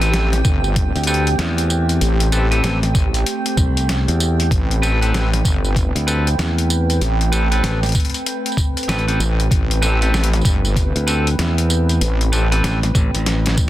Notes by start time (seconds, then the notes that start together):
Already playing: A1 A3 C4 G4 G5
0.01 C4 G4 A4 B4, closed hi-hat, tambourine
0.14 snare, closed hi-hat, tambourine
0.33 snare, closed hi-hat, tambourine
0.45 G1, kick, tambourine
0.64 tambourine
0.76 kick, closed hi-hat, tambourine
0.95 D2, closed hi-hat, tambourine
1.04 A4 B4, closed hi-hat, tambourine
1.08 C4 G4
1.14 closed hi-hat
1.27 closed hi-hat, tambourine
1.39 E2, snare, closed hi-hat, tambourine
1.58 closed hi-hat, tambourine
1.70 tambourine
1.89 closed hi-hat, tambourine
2.01 A1, closed hi-hat, tambourine
2.20 closed hi-hat, tambourine
2.32 C4 G4 A4 B4, tambourine
2.51 C4 G4 A4 B4, closed hi-hat, tambourine
2.64 A1, snare, closed hi-hat, tambourine
2.83 snare, closed hi-hat, tambourine
2.95 A1, kick, tambourine
3.14 closed hi-hat, tambourine
3.26 closed hi-hat, tambourine
3.46 closed hi-hat, tambourine
3.57 C2, kick, tambourine
3.77 closed hi-hat, tambourine
3.89 snare, closed hi-hat, tambourine
4.08 E2, closed hi-hat, tambourine
4.20 tambourine
4.40 closed hi-hat, tambourine
4.51 A1 B4, kick, closed hi-hat, tambourine
4.71 closed hi-hat, tambourine
4.82 C4 G4 A4 B4, tambourine
5.01 C4 G4 A4 B4, closed hi-hat, tambourine
5.14 snare, closed hi-hat, tambourine
5.34 snare, closed hi-hat, tambourine
5.45 G1, kick, tambourine
5.64 tambourine
5.76 kick, closed hi-hat, tambourine
5.95 D2, closed hi-hat, tambourine
6.07 C4 G4 A4 B4, tambourine
6.27 closed hi-hat, tambourine
6.39 E2, snare, closed hi-hat, tambourine
6.58 closed hi-hat, tambourine
6.70 tambourine
6.90 closed hi-hat, tambourine
7.01 A1, closed hi-hat, tambourine
7.21 closed hi-hat, tambourine
7.32 C4 G4 A4 B4, tambourine
7.51 C4 G4 A4 B4, closed hi-hat, tambourine
7.63 A1, snare, closed hi-hat, tambourine
7.83 snare, closed hi-hat, tambourine
7.86 closed hi-hat
7.89 closed hi-hat
7.92 kick, closed hi-hat
7.95 closed hi-hat, tambourine
8.00 closed hi-hat
8.05 closed hi-hat
8.10 closed hi-hat
8.14 closed hi-hat, tambourine
8.26 closed hi-hat, tambourine
8.46 closed hi-hat
8.52 tambourine
8.57 kick, tambourine
8.77 closed hi-hat, tambourine
8.83 closed hi-hat
8.88 A1 C4 G4 A4 B4, snare, closed hi-hat, tambourine
8.99 closed hi-hat
9.08 C4 G4 A4 B4, closed hi-hat, tambourine
9.20 A1, tambourine
9.40 closed hi-hat, tambourine
9.51 A1, kick, closed hi-hat, tambourine
9.71 closed hi-hat, tambourine
9.82 C4 G4 A4 B4, tambourine
10.01 C4 G4 A4 B4, closed hi-hat, tambourine
10.14 snare, tambourine
10.24 closed hi-hat
10.33 snare, closed hi-hat, tambourine
10.35 tambourine
10.41 G1, kick, tambourine
10.45 tambourine
10.65 tambourine
10.76 kick, closed hi-hat, tambourine
10.96 D2, closed hi-hat, tambourine
11.07 C4 G4 A4 B4, tambourine
11.27 closed hi-hat, tambourine
11.39 E2, snare, closed hi-hat, tambourine
11.58 closed hi-hat, tambourine
11.70 tambourine
11.89 closed hi-hat, tambourine
12.01 A1, closed hi-hat, tambourine
12.21 closed hi-hat, tambourine
12.32 C4 G4 A4 B4, tambourine
12.52 C4 G4 A4 B4, closed hi-hat, tambourine
12.64 A1, snare, closed hi-hat, tambourine
12.83 snare, closed hi-hat, tambourine
12.95 A1, kick, tambourine
13.14 A1, closed hi-hat, tambourine
13.26 snare, closed hi-hat, tambourine
13.46 snare, closed hi-hat, tambourine
13.57 kick, tambourine